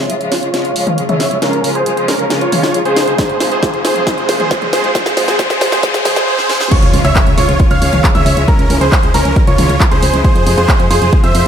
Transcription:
Already playing: riser
0.00 C#5 E5
0.10 C#3 F3 G#3 F4, closed hi-hat
0.21 C#3 F3 G#3 F4, closed hi-hat
0.32 F4 C#5, snare, open hi-hat
0.43 C#3 F3 G#3 F4, closed hi-hat
0.54 C#3 F3 G#3 F4, snare, closed hi-hat
0.65 C#5 F5, closed hi-hat
0.76 C#3 F3 G#3 F4, open hi-hat
0.87 closed hi-hat, mid tom
0.98 C#3 F3 G#3 F4, closed hi-hat
1.09 C#3 F3 G#3 F4 C#5 E5, closed hi-hat, mid tom
1.20 snare, open hi-hat
1.31 C#3 F3 G#3 F4, closed hi-hat
1.42 C#3 F3 G#3 C#4 F4 A#4, snare, closed hi-hat
1.53 closed hi-hat
1.64 C#3 F3 G#3 F4, open hi-hat
1.75 G#4 C5, closed hi-hat
1.86 C#3 F3 G#3 F4, closed hi-hat
1.97 C#3 F3 G#3 F4, closed hi-hat
2.08 C#4 A#4, snare, open hi-hat
2.19 C#3 F3 G#3 F4, closed hi-hat
2.30 C#3 F3 G#3 F4, snare, closed hi-hat
2.41 F4 C#5, closed hi-hat
2.52 C#3 F3 G#3 F4, open hi-hat, mid tom
2.63 snare, closed hi-hat
2.74 C#3 F3 G#3 F4, closed hi-hat
2.85 C#3 F3 G#3 F4 G#4 C5, closed hi-hat
2.96 snare, open hi-hat
3.07 C#3 F3 G#3 F4, closed hi-hat
3.18 C3 F3 G#3 F4 G#4 C5, kick, snare, closed hi-hat
3.29 closed hi-hat
3.40 C3 F3 G#3 F4, snare, open hi-hat
3.51 G#4 C5, closed hi-hat
3.63 C3 F3 G#3 F4, kick, snare, closed hi-hat
3.74 C3 F3 G#3 F4, closed hi-hat
3.85 G#4 C5, snare, open hi-hat
3.96 C3 F3 G#3 F4, closed hi-hat
4.07 C3 F3 G#3 F4 G#4 C5, kick, snare, closed hi-hat
4.18 closed hi-hat
4.29 C3 F3 G#3 F4, snare, open hi-hat
4.40 G#4 C5, closed hi-hat, mid tom
4.51 C3 F3 G#3 F4, kick, snare, closed hi-hat
4.62 C3 F3 G#3 F4, closed hi-hat, mid tom
4.73 G#4 C5, snare, open hi-hat
4.84 C3 F3 G#3 F4, closed hi-hat
4.95 C3 F3 G#3 F4 G#4 C5, kick, snare, closed hi-hat
5.06 snare, closed hi-hat
5.17 C3 F3 G#3 F4, snare, open hi-hat
5.28 G#4 C5, snare, closed hi-hat
5.39 C3 F3 G#3 F4 G#4 C5, kick, snare, closed hi-hat
5.50 C3 F3 G#3 F4, snare, closed hi-hat
5.61 snare, open hi-hat
5.72 C3 F3 G#3 F4 G#4 C5, snare, closed hi-hat
5.83 C3 F3 G#3 F4 G#4 C5, kick, snare, closed hi-hat
5.94 snare, closed hi-hat
6.05 C3 F3 G#3 F4 G#4 C5, snare, open hi-hat, mid tom
6.16 snare, closed hi-hat
6.27 G#4 C5
6.38 snare
6.49 G#4 C5, snare
6.61 snare
6.71 C#3 F3 G#3 F4 C#5 C#6, kick, closed hi-hat, crash, impact
6.83 C#2, closed hi-hat
6.94 C#2 C#3 F3 G#3 F4, open hi-hat
7.05 C#2 C#5 E5 E6, closed hi-hat
7.16 C#3 F3 G#3 F4, kick, clap, closed hi-hat
7.27 C#2 C#3 F3 G#3 F4, closed hi-hat
7.38 C#2 F4 C#5 C#6, open hi-hat
7.49 C#2 C#3 F3 G#3 F4, closed hi-hat
7.60 C#3 F3 G#3 F4, kick, closed hi-hat
7.71 C#2 C#5 F5 F6, closed hi-hat
7.82 C#2 C#3 F3 G#3 F4, open hi-hat
7.93 C#2, closed hi-hat, mid tom
8.04 C#3 F3 G#3 F4, kick, clap, closed hi-hat
8.15 C#2 C#3 F3 G#3 F4 C#5 E5 E6, closed hi-hat, mid tom
8.26 C#2, open hi-hat
8.37 C#2 C#3 F3 G#3 F4, closed hi-hat
8.48 C#3 F3 G#3 C#4 E4 A#4 A#5, kick, closed hi-hat
8.59 C#2, closed hi-hat
8.70 C#2 C#3 F3 G#3 E4, open hi-hat
8.81 C#2 G#4 C5 C6, closed hi-hat
8.92 C#3 F3 G#3 E4, kick, clap, closed hi-hat
9.03 C#2 C#3 F3 G#3 E4, closed hi-hat
9.14 C#2 C#4 A#4 A#5, open hi-hat
9.25 C#2 C#3 F3 G#3 E4, closed hi-hat
9.36 C#3 F3 G#3 E4, kick, closed hi-hat
9.47 C#2 F4 C#5 C#6, closed hi-hat
9.58 C#2 C#3 F3 G#3 E4, open hi-hat, mid tom
9.69 C#2, closed hi-hat
9.80 C#3 F3 G#3 E4, kick, clap, closed hi-hat
9.91 C#2 C#3 F3 G#3 E4 G#4 C5 C6, closed hi-hat
10.02 C#2, open hi-hat
10.13 C#2 C#3 F3 G#3 E4, closed hi-hat
10.24 C3 F3 G#3 F4 G#4 C5 C6, kick, closed hi-hat
10.36 F2, closed hi-hat
10.47 F2 C3 F3 G#3 F4, open hi-hat
10.58 F2 G#4 C5 C6, closed hi-hat
10.69 C3 F3 G#3 F4, kick, clap, closed hi-hat
10.79 F2 C3 F3 G#3 F4, closed hi-hat
10.91 F2 G#4 C5 C6, open hi-hat
11.02 F2 C3 F3 G#3 F4, closed hi-hat
11.13 C3 F3 G#3 F4, kick, closed hi-hat
11.24 F2 C5 E5 E6, closed hi-hat
11.35 F2 C3 F3 G#3 F4, open hi-hat

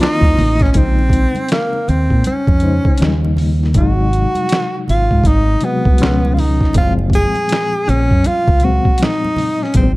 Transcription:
Already playing: D#3 A#3 C4 E4 F4 C5 D#5 A#5
0.01 D#4, finger snap, snare
0.21 D#2, kick, muted conga, high conga
0.37 A1, open hi-hat, high conga, low conga
0.60 C#4, kick, snare, closed hi-hat
0.72 A#1 C#3 G#3 C4 C#4, kick, closed hi-hat, muted conga
0.76 C4 D#4
0.99 muted conga
1.10 kick, closed hi-hat
1.35 closed hi-hat, high conga
1.48 A#3, snare, closed hi-hat
1.52 finger snap
1.73 muted conga
1.88 D#2 C4, closed hi-hat, low conga
2.10 A#2, kick
2.24 C#4, muted fingered electric bass stroke, closed hi-hat, muted conga, high conga
2.47 F2, kick, muted conga
2.60 C#3 G#3 D#4 C5, closed hi-hat
2.85 kick
2.98 C#3 F#3 A#3 D#4, closed hi-hat, muted conga
3.02 D#2, finger snap, snare
3.06 G3
3.25 muted conga, high conga
3.37 open hi-hat, high conga, low conga
3.63 snare
3.73 G#1 C3 F#3 G#3 D#4, kick, closed hi-hat, muted conga
3.78 F#4
4.13 closed hi-hat
4.35 closed hi-hat, high conga
4.49 snare, closed hi-hat, muted conga
4.53 finger snap
4.88 G#1 F4, closed hi-hat, low conga
5.11 G#2, kick
5.24 G#1 D#4, kick, closed hi-hat, muted conga, high conga
5.61 C3 F#3 G#3 F#4, closed hi-hat
5.65 B3
5.85 C2, kick
5.98 C#2 B2 F3 G#3 C#4, closed hi-hat
6.03 finger snap, snare
6.25 muted conga, high conga
6.34 F4, high conga, low conga
6.39 D#4, open hi-hat
6.61 kick, snare
6.73 F#1 A#2 F3 G#3 C4, kick, closed hi-hat, muted conga
6.78 F4
6.99 muted conga
7.10 kick, closed hi-hat
7.15 G#4
7.34 closed hi-hat, high conga
7.49 snare, closed hi-hat
7.53 finger snap
7.73 muted conga
7.88 A#1 C#4, closed hi-hat, low conga
8.11 F#2, kick
8.24 F4, muted fingered electric bass stroke, closed hi-hat, muted conga, high conga
8.48 C#2, kick, muted conga
8.60 A#2 F#3 G#3, closed hi-hat
8.64 C4 F#4
8.85 kick
8.98 closed hi-hat, muted conga
9.02 D#4, finger snap, snare
9.24 muted conga, high conga
9.37 open hi-hat, high conga, low conga
9.63 C#4, snare
9.73 G#1 A#2 F#3 G#3 B3, kick, closed hi-hat, muted conga
9.77 C4
9.83 C4

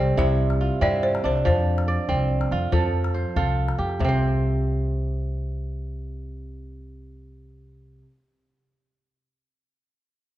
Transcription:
Already playing: C2 C3 G3 C4 A4 C5
0.17 C2 C3 E4 E5, calabash thump
0.50 calabash click
0.61 F4, calabash click
0.81 G2 C4 E4 D5, calabash thump, calabash click
1.03 C5, calabash click
1.15 calabash click
1.24 C2 D4 C5
1.36 calabash click
1.45 F2 F3 C5, calabash thump
1.78 calabash click
1.88 D5
2.09 C2 C4, calabash thump
2.41 calabash click
2.51 F2 F4, calabash click
2.72 F2 F3 A4, calabash thump, calabash click
3.04 calabash click
3.14 C5
3.36 C2 F4 A4, calabash thump
3.68 calabash click
3.78 F2 G4
3.89 calabash click
3.99 C2 C3, calabash thump
4.04 C4
4.08 C5

